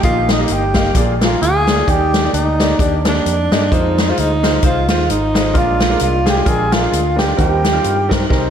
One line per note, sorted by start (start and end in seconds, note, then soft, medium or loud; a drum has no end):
0.03 0.43 A#1 loud
0.03 0.71 A#2 medium
0.03 0.27 A#3 medium
0.03 0.27 D#4 medium
0.03 0.28 F4 loud
0.03 0.28 G4 medium
0.03 0.28 D#5 medium
0.03 kick loud
0.03 closed hi-hat medium
0.29 0.54 D#4 medium
0.29 snare medium
0.29 closed hi-hat medium
0.39 0.60 A#3 medium
0.39 0.60 D#4 medium
0.39 0.60 G4 medium
0.39 0.61 D#5 medium
0.48 0.89 G1 medium
0.48 closed hi-hat medium
0.52 0.97 G4 medium
0.74 0.88 A#3 medium
0.74 0.88 D#4 medium
0.74 0.88 G4 medium
0.74 0.88 F5 medium
0.74 kick medium
0.74 snare loud
0.74 closed hi-hat medium
0.95 1.34 A#1 medium
0.95 1.63 A#2 medium
0.95 1.12 A#3 medium
0.95 1.12 F4 medium
0.95 1.12 G#4 medium
0.95 1.12 D5 medium
0.95 kick loud
0.95 closed hi-hat medium
1.21 1.48 A#3 medium
1.21 1.41 F4 medium
1.21 1.48 F4 medium
1.21 1.48 G#4 medium
1.21 1.48 A#4 medium
1.21 snare loud
1.21 closed hi-hat medium
1.42 1.81 D2 medium
1.42 1.91 G#4 loud
1.42 closed hi-hat medium
1.67 1.80 A#3 medium
1.67 1.80 F4 medium
1.67 1.80 G#4 medium
1.67 1.80 D5 medium
1.67 snare medium
1.67 closed hi-hat medium
1.88 2.27 D#2 medium
1.88 2.55 D#3 medium
1.88 2.11 A#3 medium
1.88 2.11 D#4 medium
1.88 2.11 G4 medium
1.88 2.33 G4 loud
1.88 2.11 D5 medium
1.88 kick loud
1.88 closed hi-hat medium
2.14 snare loud
2.14 closed hi-hat medium
2.24 2.45 A#3 medium
2.24 2.45 D#4 medium
2.24 2.45 G4 medium
2.24 2.45 D5 medium
2.33 2.72 D2 medium
2.33 2.76 D#4 medium
2.33 closed hi-hat medium
2.60 2.72 A#3 medium
2.60 2.72 D#4 medium
2.60 2.72 G4 medium
2.60 2.72 D5 medium
2.60 snare loud
2.60 closed hi-hat medium
2.79 3.18 D#2 medium
2.79 2.95 A#3 medium
2.79 3.03 D4 medium
2.79 2.95 D#4 medium
2.79 2.95 G4 medium
2.79 2.95 D5 medium
2.79 kick loud
2.79 closed hi-hat medium
3.05 3.31 A#3 medium
3.05 3.75 D4 medium
3.05 3.32 D#4 medium
3.05 3.32 G4 medium
3.05 3.32 D5 medium
3.05 snare loud
3.05 closed hi-hat medium
3.26 3.47 F2 medium
3.26 closed hi-hat medium
3.51 3.68 G2 medium
3.51 3.64 A#3 medium
3.51 3.64 D#4 medium
3.51 3.64 G4 medium
3.51 3.64 D#5 medium
3.51 snare loud
3.51 closed hi-hat medium
3.71 4.11 F2 medium
3.71 3.95 G#3 medium
3.71 3.95 D#4 medium
3.71 4.11 D#4 medium
3.71 3.95 F4 medium
3.71 3.95 C5 medium
3.71 kick loud
3.71 closed hi-hat medium
3.98 snare loud
3.98 closed hi-hat medium
4.08 4.28 G#3 medium
4.08 4.28 D#4 medium
4.08 4.29 F4 medium
4.08 4.21 F4 medium
4.08 4.29 C5 medium
4.17 4.57 D2 loud
4.17 4.64 D#4 medium
4.17 closed hi-hat medium
4.43 4.56 G#3 medium
4.43 4.55 D#4 medium
4.43 4.55 F4 medium
4.43 4.56 C5 medium
4.43 snare loud
4.43 closed hi-hat medium
4.63 4.90 C2 medium
4.63 4.79 G#3 medium
4.63 4.79 D#4 medium
4.63 4.79 F4 medium
4.63 4.88 F4 medium
4.63 4.79 C5 medium
4.63 kick loud
4.63 closed hi-hat medium
4.88 5.07 D#2 medium
4.88 5.15 G#3 medium
4.88 5.15 D#4 medium
4.88 5.15 F4 medium
4.88 5.08 F4 medium
4.88 5.15 C5 medium
4.88 snare loud
4.88 closed hi-hat medium
5.10 5.55 G#1 medium
5.10 5.59 D#4 medium
5.10 closed hi-hat medium
5.34 5.47 G#3 medium
5.34 5.47 D#4 medium
5.34 5.47 F4 medium
5.34 5.47 C5 medium
5.34 snare loud
5.34 closed hi-hat medium
5.53 5.94 A#1 medium
5.53 6.22 A#2 medium
5.53 5.78 G#3 medium
5.53 5.78 D4 medium
5.53 5.78 F4 medium
5.53 6.02 F4 loud
5.53 5.78 A#4 medium
5.53 kick loud
5.53 closed hi-hat medium
5.80 snare loud
5.80 closed hi-hat medium
5.89 6.11 G#3 medium
5.89 6.11 D4 medium
5.89 6.11 F4 medium
5.89 6.11 A#4 medium
5.99 6.40 C2 medium
5.99 6.25 F4 medium
5.99 closed hi-hat medium
6.26 6.39 G#3 medium
6.26 6.39 D4 medium
6.26 6.39 F4 medium
6.26 6.50 G4 medium
6.26 6.39 G#4 medium
6.26 snare loud
6.26 closed hi-hat medium
6.45 6.86 A#1 medium
6.45 6.62 G#3 medium
6.45 6.62 D4 medium
6.45 6.62 F4 medium
6.45 6.74 G#4 medium
6.45 6.62 A#4 medium
6.45 kick loud
6.45 closed hi-hat medium
6.71 6.98 G#3 medium
6.71 6.98 D4 medium
6.71 6.98 F4 medium
6.71 7.18 F4 medium
6.71 6.98 A#4 medium
6.71 snare loud
6.71 closed hi-hat medium
6.93 7.32 D2 medium
6.93 closed hi-hat medium
7.16 7.30 G#3 medium
7.16 7.30 D4 medium
7.16 7.30 F4 medium
7.16 7.37 G4 medium
7.16 7.30 A#4 medium
7.16 snare loud
7.16 closed hi-hat medium
7.37 7.78 D#2 loud
7.37 8.05 D#3 medium
7.37 7.62 G3 medium
7.37 7.61 C4 medium
7.37 7.62 D#4 medium
7.37 8.23 G4 medium
7.37 7.61 A#4 medium
7.37 kick loud
7.37 closed hi-hat medium
7.64 snare loud
7.64 closed hi-hat medium
7.73 7.94 G3 medium
7.73 7.94 C4 medium
7.73 7.94 D#4 medium
7.73 7.95 F4 medium
7.84 8.24 G2 medium
7.84 closed hi-hat medium
8.09 8.22 G3 medium
8.09 8.22 C4 medium
8.09 8.22 D#4 medium
8.09 8.22 A#4 medium
8.09 kick medium
8.09 snare medium
8.09 closed hi-hat medium
8.29 8.50 C2 medium
8.29 8.46 G3 medium
8.29 8.46 C4 medium
8.29 8.46 D#4 medium
8.29 8.46 A#4 medium
8.29 kick loud
8.29 snare medium